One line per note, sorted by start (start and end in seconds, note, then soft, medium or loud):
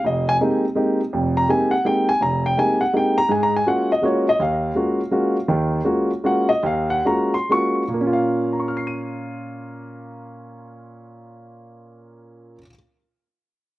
0.05 0.35 F1 medium
0.05 0.27 D#5 medium
0.29 0.36 G#5 loud
0.41 0.64 G#3 medium
0.41 0.64 A#3 soft
0.41 0.64 C4 soft
0.41 0.64 D#4 soft
0.41 0.64 G4 medium
0.75 1.00 G#3 medium
0.75 1.00 A#3 soft
0.75 1.00 C4 soft
0.75 1.00 D#4 medium
0.75 1.00 G4 medium
1.13 1.44 F1 medium
1.13 1.43 F2 medium
1.37 1.48 A#5 medium
1.48 1.72 G#3 soft
1.48 1.73 A#3 soft
1.48 1.73 C4 soft
1.48 1.73 D#4 soft
1.48 1.73 G4 medium
1.48 1.71 G#5 medium
1.71 1.84 F#5 medium
1.85 2.09 G#3 soft
1.85 2.09 A#3 soft
1.85 2.09 C4 soft
1.85 2.09 D#4 soft
1.85 2.09 G4 medium
1.85 2.08 G5 medium
2.09 2.21 G#5 medium
2.21 2.52 F1 medium
2.21 2.44 A#5 medium
2.46 2.57 G5 medium
2.57 2.81 G#3 soft
2.57 2.82 A#3 soft
2.57 2.82 C4 soft
2.57 2.82 D#4 soft
2.57 2.81 G4 medium
2.57 2.80 G#5 medium
2.81 2.93 F#5 medium
2.93 3.18 G#3 soft
2.93 3.18 A#3 soft
2.93 3.18 C4 soft
2.93 3.18 D#4 soft
2.93 3.18 G4 soft
2.93 3.17 G5 medium
3.18 3.30 A#5 loud
3.29 3.60 G#2 medium
3.29 3.61 G#3 medium
3.29 3.42 G#5 medium
3.43 3.54 A#5 medium
3.56 3.67 G#5 medium
3.67 3.91 G#3 soft
3.67 3.91 A#3 soft
3.67 3.91 C#4 soft
3.67 3.91 F4 soft
3.67 3.91 F#4 medium
3.67 3.89 F#5 medium
3.92 4.03 D#5 medium
4.02 4.26 G#3 soft
4.02 4.27 A#3 soft
4.02 4.27 C#4 soft
4.02 4.27 F4 soft
4.02 4.27 F#4 medium
4.02 4.26 C#5 medium
4.29 4.40 D#5 medium
4.39 4.70 D#2 medium
4.39 5.45 F5 medium
4.75 5.00 G#3 soft
4.75 5.00 A#3 soft
4.75 5.00 C#4 soft
4.75 5.00 F4 soft
4.75 5.00 F#4 medium
5.11 5.36 G#3 medium
5.11 5.36 A#3 soft
5.11 5.36 C#4 soft
5.11 5.36 F4 soft
5.11 5.36 F#4 medium
5.48 5.80 D#2 medium
5.48 5.80 D#3 medium
5.84 6.10 G#3 soft
5.84 6.10 A#3 soft
5.84 6.10 C#4 soft
5.84 6.10 F4 soft
5.84 6.10 F#4 medium
6.24 6.49 G#3 soft
6.24 6.50 A#3 soft
6.24 6.49 C#4 soft
6.24 6.49 F4 soft
6.24 6.50 F#4 medium
6.24 6.49 F#5 medium
6.49 6.62 D#5 medium
6.63 6.98 D#2 medium
6.63 6.90 F5 medium
6.90 7.04 F#5 medium
7.05 7.34 G#3 soft
7.05 7.34 A#3 soft
7.05 7.34 C#4 soft
7.05 7.35 F4 soft
7.05 7.35 F#4 medium
7.05 7.33 A#5 medium
7.34 7.49 C6 medium
7.49 7.82 G#3 soft
7.49 7.82 A#3 soft
7.49 7.82 C#4 soft
7.49 7.83 F4 soft
7.49 7.82 F#4 medium
7.49 7.88 C#6 medium
7.88 12.55 A#2 medium
7.94 12.58 A#3 medium
8.01 12.62 C#4 medium
8.07 12.65 F4 medium
8.13 12.68 F5 medium
8.53 12.58 A#5 soft
8.60 12.61 C#6 soft
8.68 12.65 F6 soft
8.77 12.70 C7 soft
8.87 12.75 D#7 soft